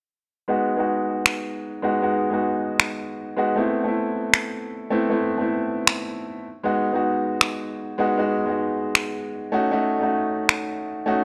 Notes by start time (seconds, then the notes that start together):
0.48 G#3 B3 D#4 F#4
0.76 G#3 B3 D#4
0.80 F#4
1.26 finger snap
1.82 G#3 B3 D#4 F#4
2.02 G#3 B3 D#4 F#4
2.30 G#3 B3 D#4 F#4
2.80 finger snap
3.36 G#3 B3 D#4 F#4
3.56 A3 B3 C4 E4
3.84 A3 B3 C4
3.88 E4
4.34 finger snap
4.90 A3 B3 C4 E4
5.10 A3 B3 C4 E4
5.38 A3 B3 C4 E4
5.87 finger snap
6.63 G#3 B3 D#4 F#4
6.92 G#3 B3 D#4 F#4
7.41 finger snap
7.98 G#3 B3 D#4 F#4
8.17 G#3 B3 D#4 F#4
8.45 G#3 B3 D#4
8.49 F#4
8.95 finger snap
9.52 A3 C#4 D#4 F#4
9.71 A3 C#4 D#4 F#4
9.99 A3 C#4 D#4 F#4
10.49 finger snap
11.06 A3 C#4 D#4 F#4